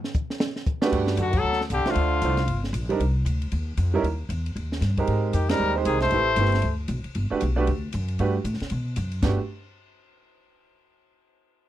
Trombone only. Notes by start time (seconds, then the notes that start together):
1.19 D3
1.35 F#3
1.71 D3
1.88 D3
5.34 D#3
5.50 G3
5.86 D#3
6.00 A3